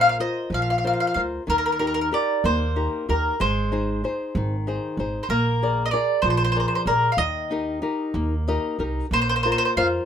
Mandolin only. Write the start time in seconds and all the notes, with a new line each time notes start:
0.01 F5
0.09 F5
0.20 D#5
0.54 F5
0.62 F5
0.70 F5
0.78 F5
0.87 F5
0.93 F5
1.00 F5
1.07 F5
1.14 F5
1.50 A#4
1.58 A#4
1.66 A#4
1.72 A#4
1.79 A#4
1.87 A#4
1.94 A#4
2.01 A#4
2.14 D5
2.45 C5
3.10 A#4
3.41 C5
5.23 C5
5.30 A#4
5.86 D#5
5.91 D5
6.22 C5
6.30 C5
6.37 C5
6.44 C5
6.52 C5
6.60 C5
6.68 C5
6.75 C5
6.87 A#4
7.12 F5
7.18 D#5
9.13 C5
9.22 C5
9.29 C5
9.36 C5
9.43 C5
9.52 C5
9.58 C5
9.65 C5
9.77 F5